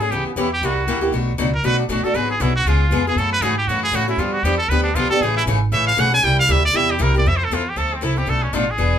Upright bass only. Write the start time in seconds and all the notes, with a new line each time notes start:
Already playing: G#2
0.11 C#2
0.25 muted upright bass stroke
0.36 E2
0.61 C2
0.87 D2
1.12 B1
1.38 C#2
1.63 B1
1.88 A1
2.03 muted upright bass stroke
2.14 G#1
2.40 B1
2.65 C#2
2.90 F2
3.16 F#2
3.41 G#2
3.67 F#2
3.92 A2
4.17 G2
4.43 E2
4.68 D2
4.94 B1
5.09 muted upright bass stroke
5.21 A1
5.46 G#1
5.72 A1
5.97 B1
6.23 C2
6.49 D2
6.73 E2
7.00 C2
7.25 F2
7.50 E2
7.76 D2
8.02 C2
8.27 B1
8.53 A1
8.78 E1